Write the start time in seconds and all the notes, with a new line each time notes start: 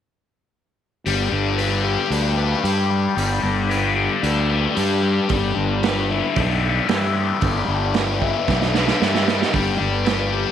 1.06 G1 D3 G3, open hi-hat
1.32 G1 D4
1.58 B4, open hi-hat
1.67 G3
1.84 G4
2.10 D2 D4, open hi-hat
2.32 G3
2.37 B4
2.64 G2 G4, open hi-hat
2.90 G3
2.96 G2
3.17 G1 G3, open hi-hat
3.43 G1 D4
3.57 D3
3.70 B4, open hi-hat
3.96 G4
4.19 G3 D4
4.23 D2, open hi-hat
4.50 B4
4.75 G2 G4, open hi-hat
4.82 G3
5.03 G3
5.29 G1 G3, kick, open hi-hat
5.45 G2
5.55 G1 D4
5.83 B4, snare, open hi-hat
6.09 D3 E4
6.36 B1 D4, kick, open hi-hat
6.63 B4
6.72 G3
6.88 G2 E4, snare, open hi-hat
7.16 G3
7.33 G3
7.41 G1 G3, kick, open hi-hat
7.68 G1 D4
7.94 G2 B4, snare, open hi-hat
8.22 E4, kick
8.48 B1 D4, kick, snare
8.62 D3, snare
8.75 B4, snare
8.88 snare
9.01 G2 E4, snare
9.15 snare
9.24 G3
9.28 snare
9.42 snare
9.52 G1 G3, kick, open hi-hat
9.78 G1 D4
9.86 G3
10.05 B4, snare, open hi-hat
10.33 G4